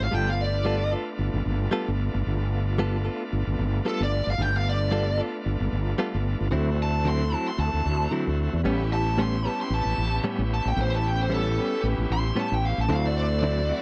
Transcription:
0.04 F5
0.10 G1 G3 A3 B3 D4 F4 A4 G5
0.30 F5
0.41 D5
0.65 G3 B3 F4 A4
0.91 B3 F4 A4
1.19 G1
1.33 G1
1.45 G1
1.71 G3 B3 F4 A4
1.88 G1
2.14 G1
2.26 G1
2.78 G3 B3 F4 A4
3.05 B3 F4 A4
3.33 G1
3.47 G1
3.59 G1
3.85 G3 B3 F4 A4
4.00 G1 D5
4.27 G1 F5
4.38 G1 A3 B3 D4
4.42 F4 G5
4.57 F5
4.69 D5
4.91 G3 B3 F4 A4
5.18 B3 F4 A4
5.46 G1
5.60 G1
5.72 G1
5.98 G3 B3 F4 A4
6.14 G1
6.40 G1
6.51 D2 D3 F#3 A3 C4 E4
6.55 F#4
6.82 A5
7.05 D3 F#3 C4 E4 C6
7.32 F#3 C4 E4 A5
7.48 C6
7.58 D2 A5
7.73 D2
7.85 D2
8.11 D3 F#3 C4 E4
8.27 D2
8.53 E2
8.64 A1 A2 G3 B3 C#4 E4 G4 B4
8.93 A5
9.18 A2 G3 B3 C#4 C6
9.44 G3 B3 C#4 G4 B4 A5
9.59 C#4 G4 B4 C6
9.70 A1 A5
9.85 A1
9.98 A1
10.24 A2 G3 B3 C#4
10.38 A1
10.54 A5
10.65 A1 G5
10.76 A1 C#4 G4 B4
10.81 C5
10.95 A5
11.08 G5
11.23 C5
11.29 A2 G3 B3 C#4
11.34 A4
11.56 G3 B3 C#4 G4 B4
11.72 C#4 G4 B4
11.83 A1
11.98 A1
12.10 A1 C6
12.36 A2 G3 B3 C#4
12.40 A5
12.52 A1 G5
12.65 F5
12.78 A1 A5
12.87 D2 D3 F#3 A3 C4 E4 F#4
12.92 F#4 C5 F5
13.06 D5
13.18 D5
13.42 D3 F#3 C4 E4
13.69 F#3 C4 E4 F#4 B4

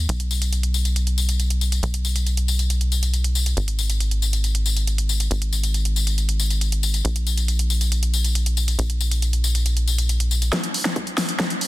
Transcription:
0.09 B1, closed hi-hat, tambourine
0.20 closed hi-hat
0.31 tambourine
0.42 closed hi-hat, tambourine
0.53 closed hi-hat, tambourine
0.63 closed hi-hat
0.74 tambourine
0.85 closed hi-hat, tambourine
0.96 closed hi-hat, tambourine
1.07 closed hi-hat
1.18 tambourine
1.29 closed hi-hat, tambourine
1.40 closed hi-hat, tambourine
1.50 closed hi-hat
1.61 tambourine
1.72 closed hi-hat, tambourine
1.83 B1, closed hi-hat, tambourine
1.94 closed hi-hat
2.05 tambourine
2.16 closed hi-hat, tambourine
2.27 closed hi-hat, tambourine
2.37 closed hi-hat
2.48 tambourine
2.59 closed hi-hat, tambourine
2.70 closed hi-hat, tambourine
2.81 closed hi-hat
2.92 tambourine
3.03 closed hi-hat, tambourine
3.14 closed hi-hat, tambourine
3.24 closed hi-hat
3.35 tambourine
3.46 closed hi-hat, tambourine
3.57 G#1, closed hi-hat, tambourine
3.68 closed hi-hat
3.79 tambourine
3.90 closed hi-hat, tambourine
4.00 closed hi-hat, tambourine
4.11 closed hi-hat
4.22 tambourine
4.33 closed hi-hat, tambourine
4.44 closed hi-hat, tambourine
4.55 closed hi-hat
4.66 tambourine
4.77 closed hi-hat, tambourine
4.87 closed hi-hat, tambourine
4.98 closed hi-hat
5.09 tambourine
5.20 closed hi-hat, tambourine
5.31 G#1, closed hi-hat, tambourine
5.42 closed hi-hat
5.53 tambourine
5.63 closed hi-hat, tambourine
5.74 closed hi-hat, tambourine
5.85 closed hi-hat
5.96 tambourine
6.07 closed hi-hat, tambourine
6.18 closed hi-hat, tambourine
6.29 closed hi-hat
6.40 tambourine
6.50 closed hi-hat, tambourine
6.61 closed hi-hat, tambourine
6.72 closed hi-hat
6.83 tambourine
6.94 closed hi-hat, tambourine
7.05 A#1, closed hi-hat, tambourine
7.16 closed hi-hat
7.27 tambourine
7.37 closed hi-hat, tambourine
7.48 closed hi-hat, tambourine
7.59 closed hi-hat
7.70 tambourine
7.81 closed hi-hat, tambourine
7.92 closed hi-hat, tambourine
8.03 closed hi-hat
8.14 tambourine
8.24 closed hi-hat, tambourine
8.35 closed hi-hat, tambourine
8.46 closed hi-hat
8.57 tambourine
8.68 closed hi-hat, tambourine
8.79 A#1, closed hi-hat, tambourine
8.90 closed hi-hat
9.01 tambourine
9.11 closed hi-hat, tambourine
9.22 closed hi-hat, tambourine
9.33 closed hi-hat
9.44 tambourine
9.55 closed hi-hat, tambourine
9.66 closed hi-hat, tambourine
9.77 closed hi-hat
9.88 tambourine
9.98 closed hi-hat, tambourine
10.09 closed hi-hat, tambourine
10.20 closed hi-hat
10.31 tambourine
10.42 closed hi-hat, tambourine
10.53 kick, snare, closed hi-hat
10.64 closed hi-hat
10.74 open hi-hat
10.85 snare, closed hi-hat
10.96 kick, closed hi-hat
11.07 closed hi-hat
11.18 snare, open hi-hat
11.29 closed hi-hat
11.40 kick, snare, closed hi-hat
11.50 closed hi-hat
11.61 open hi-hat

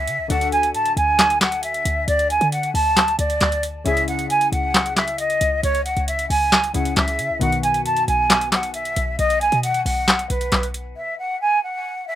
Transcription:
Already playing: C#3 C#4 E4 G#4 E5
0.07 C#3, closed hi-hat
0.19 C#2
0.28 D2 D3 D4 F#4 A4 F#5, closed hi-hat
0.41 closed hi-hat
0.52 G#5, closed hi-hat
0.63 closed hi-hat
0.74 A2 A5, closed hi-hat
0.86 closed hi-hat
0.97 D2 G#5, closed hi-hat
1.19 snare, clap, closed hi-hat
1.30 closed hi-hat
1.41 F#5, snare, clap, closed hi-hat
1.52 closed hi-hat
1.63 E5, closed hi-hat
1.74 closed hi-hat
1.85 D2, closed hi-hat
2.08 D2 D5, closed hi-hat
2.19 closed hi-hat
2.30 G#5, closed hi-hat
2.41 D3, closed hi-hat
2.52 F#5, closed hi-hat
2.63 closed hi-hat
2.74 D2 A5, open hi-hat
2.97 snare, clap, closed hi-hat
3.08 closed hi-hat
3.19 D2 D5, closed hi-hat
3.30 closed hi-hat
3.41 D2, snare, clap, closed hi-hat
3.52 closed hi-hat
3.63 closed hi-hat
3.85 C#2 C#3 C#4 E4 G#4 E5, closed hi-hat
3.97 closed hi-hat
4.08 F#5, closed hi-hat
4.19 closed hi-hat
4.30 G#5, closed hi-hat
4.41 closed hi-hat
4.52 C#2 F#5, closed hi-hat
4.74 snare, clap, closed hi-hat
4.86 closed hi-hat
4.97 E5, snare, clap, closed hi-hat
5.08 closed hi-hat
5.18 D#5, closed hi-hat
5.30 closed hi-hat
5.41 C#2, closed hi-hat
5.63 C#2 C#5, closed hi-hat
5.75 closed hi-hat
5.85 F#5, closed hi-hat
5.97 C#2, closed hi-hat
6.08 E5, closed hi-hat
6.19 closed hi-hat
6.30 C#2 G#5, open hi-hat
6.52 snare, clap, closed hi-hat
6.64 closed hi-hat
6.74 C#2 C#3 C#4 E4 G#4 F#5, closed hi-hat
6.85 closed hi-hat
6.96 C#2 E5, snare, clap, closed hi-hat
7.08 closed hi-hat
7.19 C#3, closed hi-hat
7.30 C#2
7.39 B1 B2 D#3 B3 F#4 F#5, closed hi-hat
7.52 closed hi-hat
7.63 G#5, closed hi-hat
7.74 closed hi-hat
7.85 F#2 A5, closed hi-hat
7.97 closed hi-hat
8.08 B1 G#5, closed hi-hat
8.30 snare, clap, closed hi-hat
8.41 closed hi-hat
8.52 F#5, snare, clap, closed hi-hat
8.63 closed hi-hat
8.74 E5, closed hi-hat
8.85 closed hi-hat
8.96 B1, closed hi-hat
9.19 B1 D#5, closed hi-hat
9.30 closed hi-hat
9.41 G#5, closed hi-hat
9.52 B2, closed hi-hat
9.63 F#5, closed hi-hat
9.74 closed hi-hat
9.85 B1 F#5, open hi-hat
10.08 snare, clap, closed hi-hat
10.19 closed hi-hat
10.30 B1 B4, closed hi-hat
10.41 closed hi-hat
10.52 B1, snare, clap, closed hi-hat
10.63 closed hi-hat
10.74 closed hi-hat
10.97 E5
11.19 F#5
11.41 G#5
11.63 F#5
12.07 E5

